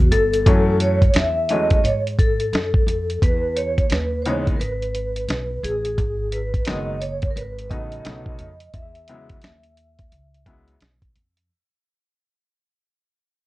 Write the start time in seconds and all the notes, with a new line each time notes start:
Already playing: E2
0.11 G1 A4, closed hi-hat, low conga, shaker
0.33 closed hi-hat, shaker
0.46 F#2 E3 F#3 A3 C#4, kick, closed hi-hat
0.80 C#5, closed hi-hat
1.02 kick, closed hi-hat
1.14 E2 E5, snare, closed hi-hat
1.49 E3 F#3 G#3 A3 C#4 D#5, closed hi-hat
1.70 kick, closed hi-hat
1.84 G#2 C#5, closed hi-hat
2.07 closed hi-hat
2.19 A4, kick, closed hi-hat
2.40 closed hi-hat
2.53 F#2, snare, closed hi-hat
2.74 kick
2.87 F2, closed hi-hat
3.10 closed hi-hat
3.22 E2 B4, kick, closed hi-hat
3.56 C#5, closed hi-hat
3.78 kick, closed hi-hat
3.90 D#2 B4, snare, closed hi-hat
4.22 C#3 E3 C5 C#5, closed hi-hat
4.26 G#3 B3 D#4
4.47 kick, closed hi-hat
4.56 G#1 A#4 B4
4.61 closed hi-hat
4.82 closed hi-hat
4.95 closed hi-hat
5.16 closed hi-hat
5.29 B1, snare, closed hi-hat
5.63 A1 G#4, closed hi-hat
5.85 closed hi-hat
5.98 G#1, kick, closed hi-hat
6.32 B4, closed hi-hat
6.54 kick, closed hi-hat
6.65 F#1 D#3 F#3 G#3 B3 D#4 D#5, snare, closed hi-hat
7.01 C#5, closed hi-hat
7.22 kick, closed hi-hat
7.30 A#4
7.36 G#1 B4, closed hi-hat
7.58 closed hi-hat
7.69 C#3 F#3 A3 B3 D#4 D#5, kick, closed hi-hat
7.92 closed hi-hat
8.05 B1 C#3 F#3 A3 B3 D#4, snare, closed hi-hat
8.26 kick
8.39 F2, closed hi-hat
8.60 closed hi-hat
8.74 E2 E5, kick, closed hi-hat
8.95 closed hi-hat
9.08 C#3 F#3 G#3 B3 E4, closed hi-hat
9.29 kick, closed hi-hat
9.41 D#2, snare, closed hi-hat
9.63 closed hi-hat
9.77 closed hi-hat
9.99 kick, closed hi-hat
10.12 C#2, closed hi-hat
10.35 closed hi-hat
10.46 C#3 F#3 G#3 B3 E4, kick, closed hi-hat
10.68 closed hi-hat
10.81 B1, snare, closed hi-hat
11.02 kick, closed hi-hat
11.15 F2, closed hi-hat
11.37 closed hi-hat